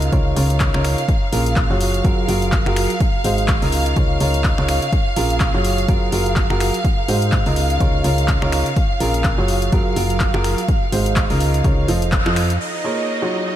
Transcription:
Already playing: fm bass C#2, upright piano C#3 F4 A#4, violin section F5
0.02 closed hi-hat
0.12 fm bass C#2, upright piano C#3 D#4 F4 A#4 C#5, kick, closed hi-hat
0.36 fm bass C#2, upright piano C#3 D#4 F4 A#4 C#5, open hi-hat
0.50 closed hi-hat
0.60 kick, clap, closed hi-hat
0.74 fm bass C#2, upright piano C#3 D#4 F4 A#4 C#5, finger snap
0.85 finger snap, open hi-hat
0.98 closed hi-hat
1.08 kick, closed hi-hat
1.32 fm bass A#1, upright piano A#2 C#4 F4 G#4 A#4, open hi-hat
1.46 closed hi-hat
1.56 kick, clap, closed hi-hat
1.70 fm bass F#1, upright piano F#3 F4 F#4 G#4 C#5
1.81 open hi-hat
1.94 closed hi-hat
2.04 fm bass F#1, upright piano F#3 F4 F#4 G#4 A#4, kick, closed hi-hat
2.28 fm bass F#1, upright piano F#3 F4 F#4 G#4 A#4, open hi-hat
2.42 closed hi-hat
2.52 kick, clap, closed hi-hat
2.66 fm bass F#1, upright piano F#3 F4 F#4 G#4 A#4, finger snap
2.76 finger snap, open hi-hat
2.90 closed hi-hat
3.00 kick, closed hi-hat
3.24 fm bass G#1, upright piano G#3 D#4 F#4 G#4 C5, open hi-hat
3.38 closed hi-hat
3.48 kick, clap, closed hi-hat
3.62 fm bass C#2, upright piano C#3 D#4 F4 A#4 D#5, open hi-hat
3.72 open hi-hat
3.86 closed hi-hat
3.96 fm bass C#2, upright piano C#3 D#4 F4 A#4 C#5, kick, closed hi-hat
4.20 fm bass C#2, upright piano C#3 D#4 F4 A#4 C#5, open hi-hat
4.34 closed hi-hat
4.44 kick, clap, closed hi-hat
4.58 fm bass C#2, upright piano C#3 D#4 F4 A#4 C#5, finger snap
4.69 finger snap, open hi-hat
4.82 closed hi-hat
4.93 kick, closed hi-hat
5.16 fm bass A#1, upright piano A#2 C#4 F4 G#4 A#4, open hi-hat
5.30 closed hi-hat
5.40 kick, clap, closed hi-hat
5.54 fm bass F#1, upright piano F#3 F4 F#4 G#4 C#5
5.64 open hi-hat
5.78 closed hi-hat
5.88 fm bass F#1, upright piano F#3 F4 F#4 G#4 A#4, kick, closed hi-hat
6.12 fm bass F#1, upright piano F#3 F4 F#4 G#4 A#4, open hi-hat
6.26 closed hi-hat
6.36 kick, clap, closed hi-hat
6.50 fm bass F#1, upright piano F#3 F4 F#4 G#4 A#4, finger snap
6.60 finger snap, open hi-hat
6.74 closed hi-hat
6.84 kick, closed hi-hat
7.08 fm bass G#2, upright piano G#3 D#4 F#4 G#4 C5, open hi-hat
7.22 closed hi-hat
7.32 kick, clap, closed hi-hat
7.46 fm bass C#2, upright piano C#3 D#4 F4 A#4 D#5, open hi-hat
7.56 open hi-hat
7.70 closed hi-hat
7.80 fm bass C#2, upright piano C#3 D#4 F4 A#4 C#5, kick, closed hi-hat
8.04 fm bass C#2, upright piano C#3 D#4 F4 A#4 C#5, open hi-hat
8.18 closed hi-hat
8.28 kick, clap, closed hi-hat
8.42 fm bass C#2, upright piano C#3 D#4 F4 A#4 C#5, finger snap
8.52 finger snap, open hi-hat
8.66 closed hi-hat
8.76 kick, closed hi-hat
9.00 fm bass A#1, upright piano A#2 C#4 F4 G#4 A#4, open hi-hat
9.14 closed hi-hat
9.24 kick, clap, closed hi-hat
9.38 fm bass F#1, upright piano F#3 F4 F#4 G#4 C#5
9.48 open hi-hat
9.62 closed hi-hat
9.72 fm bass F#1, upright piano F#3 F4 F#4 G#4 A#4, kick, closed hi-hat
9.96 fm bass F#1, upright piano F#3 F4 F#4 G#4 A#4, open hi-hat
10.10 closed hi-hat
10.20 kick, clap, closed hi-hat
10.34 fm bass F#1, upright piano F#3 F4 F#4 G#4 A#4, finger snap
10.44 finger snap, open hi-hat
10.58 closed hi-hat
10.68 kick, closed hi-hat
10.92 fm bass G#1, upright piano G#3 D#4 F#4 G#4 C5, open hi-hat
11.06 closed hi-hat
11.16 kick, clap, closed hi-hat
11.30 fm bass C#2, upright piano C#3 D#4 F4 A#4 D#5, open hi-hat
11.40 open hi-hat
11.54 closed hi-hat
11.64 fm bass C#2, upright piano C#3 D#4 F4 A#4 C#5, kick, closed hi-hat
11.88 fm bass F1, upright piano F3 F4 A4 C5 D#5, open hi-hat
12.02 closed hi-hat
12.12 kick, clap, closed hi-hat
12.26 fm bass F2, upright piano F3 F4 A4 C5 D#5, finger snap
12.36 finger snap, open hi-hat
12.50 closed hi-hat
12.60 violin section D#4 D#5, downlifter
12.84 upright piano A#3 F4 G#4 A#4 C#5
13.22 upright piano F#3 F4 F#4 G#4 C#5

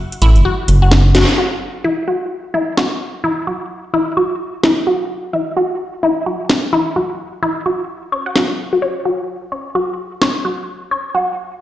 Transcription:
0.12 closed hi-hat
0.22 analog synth bass A1, synth arpeggio sound E4, closed hi-hat
0.36 analog synth bass F#1, closed hi-hat
0.45 synth arpeggio sound F#4
0.68 analog synth bass F#1, closed hi-hat
0.82 synth arpeggio sound F#4
0.91 snare, closed hi-hat
1.15 synth arpeggio sound F#4, snare, closed hi-hat
1.29 closed hi-hat
1.38 synth arpeggio sound F#4
1.84 synth arpeggio sound E4
2.08 synth arpeggio sound F#4
2.54 synth arpeggio sound E4
2.77 synth arpeggio sound F#4, snare
3.24 synth arpeggio sound E4
3.47 synth arpeggio sound F#4
3.94 synth arpeggio sound E4
4.17 synth arpeggio sound F#4
4.63 synth arpeggio sound E4, snare
4.87 synth arpeggio sound F#4
5.33 synth arpeggio sound E4
5.56 synth arpeggio sound F#4
6.03 synth arpeggio sound E4
6.26 synth arpeggio sound F#4
6.50 snare
6.73 synth arpeggio sound E4
6.96 synth arpeggio sound F#4
7.43 synth arpeggio sound E4
7.66 synth arpeggio sound F#4
8.12 synth arpeggio sound C#5
8.26 synth arpeggio sound F#5
8.36 synth arpeggio sound F#4, snare
8.73 synth arpeggio sound F#4
8.82 synth arpeggio sound C#5
9.05 synth arpeggio sound F#4
9.52 synth arpeggio sound C#5
9.75 synth arpeggio sound F#4
10.22 synth arpeggio sound C#5, snare
10.45 synth arpeggio sound F#4
10.91 synth arpeggio sound C#5
11.15 synth arpeggio sound F#4

